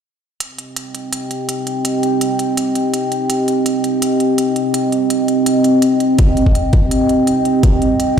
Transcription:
0.40 C4, closed hi-hat
0.45 G4
0.52 D#5
0.58 closed hi-hat
0.68 G5
0.76 closed hi-hat
0.95 closed hi-hat
1.13 closed hi-hat
1.31 closed hi-hat
1.49 closed hi-hat
1.67 closed hi-hat
1.85 closed hi-hat
2.03 closed hi-hat
2.21 closed hi-hat
2.39 closed hi-hat
2.57 closed hi-hat
2.75 closed hi-hat
2.94 closed hi-hat
3.12 closed hi-hat
3.30 closed hi-hat
3.48 closed hi-hat
3.66 closed hi-hat
3.84 closed hi-hat
4.02 closed hi-hat
4.20 closed hi-hat
4.38 closed hi-hat
4.56 closed hi-hat
4.74 closed hi-hat
4.92 closed hi-hat
5.10 closed hi-hat
5.28 closed hi-hat
5.46 closed hi-hat
5.64 closed hi-hat
5.82 closed hi-hat
6.00 closed hi-hat
6.19 kick, closed hi-hat
6.37 closed hi-hat
6.46 kick
6.55 closed hi-hat
6.73 kick, closed hi-hat
6.91 closed hi-hat
7.09 closed hi-hat
7.27 closed hi-hat
7.45 closed hi-hat
7.63 kick, closed hi-hat
7.82 closed hi-hat
8.00 closed hi-hat

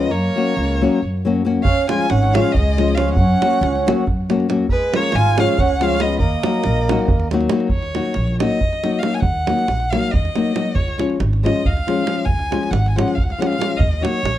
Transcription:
Already playing: C#2 B3 D#5
0.09 F#2 A#3 C#5
0.36 F#3 A#3 C#4 F#4
0.57 C#2
0.81 F#3 A#3 C#4 F#4
1.02 F#2
1.25 F#3 A#3 C#4 F#4
1.45 F#3 A#3 C#4 F#4
1.62 C#2 C#4 F5, davul low
1.88 F3 G#3 C#4 F4 G#5, davul high
2.00 davul high
2.08 G#1 C#4 F#5, davul high
2.23 davul high
2.33 F3 G#3 C#4 F4 F5, davul high
2.45 davul high
2.52 G#3 D#5, davul low
2.56 C#2
2.77 F3 G#3 C#4 F4, davul high
2.88 davul high
2.95 F3 G#3 C#4 F4 F5, davul high
3.14 F#5, davul low
3.18 F#2 C#4
3.41 F#3 A#3 C#4 F#4, davul high
3.53 davul high
3.61 C#2, davul high
3.75 davul high
3.87 F#3 A#3 C#4 F#4, davul high
4.07 F#2, davul low
4.29 F#3 A#3 C#4 F#4, davul high
4.40 davul high
4.49 F#3 A#3 C#4 F#4, davul high
4.68 C#2 G#3 B4, davul low
4.93 F3 G#3 A#3 C#4 F4 C#5, davul high
5.03 davul high
5.12 G#1 F4 G#5, davul high
5.26 davul high
5.37 F3 G#3 C#4 F4 F5, davul high
5.41 C#4
5.49 davul high
5.58 C#2 C#4 F#5, davul low
5.80 F3 G#3 C#4 F4 F5, davul high
5.91 davul high
5.99 F3 G#3 B3 C#4 F4 D#5, davul high
6.19 D#2 A#3 D#5, davul low
6.43 F#3 A#3 D#4 F#4, davul high
6.54 davul high
6.64 A#1, davul high
6.76 davul high
6.89 F#3 A#3 D#4 F#4, davul high
6.99 davul high
7.08 D#2, davul low
7.20 davul high
7.31 F#3 A#3 D#4 F#4, davul high
7.41 davul high
7.49 F#3 A#3 D#4 F#4, davul high
7.60 davul high
7.69 D#2 C#5, davul low
7.83 davul high
7.95 F#3 A#3 D#4 F#4, davul high
8.05 davul high
8.14 A#1, davul high
8.27 davul high
8.39 F#3 A#3 D#4 F#4 D#5, davul high
8.51 davul high
8.61 D#2, davul low
8.73 davul high
8.83 F#3 A#3 D#4 F#4, davul high
8.99 F#3 F5, davul high
9.03 A#3 D#4 F#4
9.14 G#5, davul high
9.20 D#2 F#5, davul low
9.47 F#3 A#3 D#4 F#4, davul high
9.59 davul high
9.68 A#1, davul high
9.80 davul high
9.90 F#3 A#3 D#4 F5, davul high
9.95 F#4
10.04 davul high
10.11 D#2 D#5, davul low
10.25 davul high
10.36 F#3 A#3 D#4 F#4, davul high
10.55 F#3 A#3 D#4 F#4, davul high
10.66 davul high
10.75 C#2 C#5, davul low
10.88 davul high
10.98 F3 G#3 C#4 F4, davul high
11.10 davul high
11.20 G#1, davul high
11.33 davul high
11.43 F3 G#3 C#4 F4 D#5, davul high
11.56 davul high
11.65 C#2 F5, davul low
11.77 davul high
11.87 F3 G#3 C#4 F4, davul high
12.06 F3 G#3 C#4 F4, davul high
12.18 davul high
12.25 C#2 G#5, davul low
12.39 davul high
12.51 F3 G#3 C#4 F4, davul high
12.63 davul high
12.71 G#1 F#5, davul high
12.86 G#5, davul high
12.96 F3 G#3 C#4 F4 F#5, davul high
13.08 davul high
13.15 C#2 F5, davul low
13.23 F#5
13.30 F5, davul high
13.38 F3 G#3 C#4 F4 F#5, davul high
13.46 F5
13.53 davul high
13.58 F3 G#3 C#4 F4, davul high
13.72 davul high
13.77 D#2 D#5, davul low
13.93 davul high
14.01 F#3 A#3 D#4 F#4 C#5, davul high
14.23 A#1, davul high

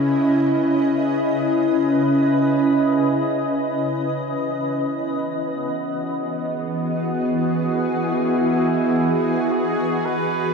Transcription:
Already playing: C#3 C#4 E4 B4 D#5
1.40 G#4
1.90 B4
2.93 G#4
3.92 E3
4.45 B3
5.21 F#4
5.55 G#4
8.04 E4
9.52 G#4
10.05 B4

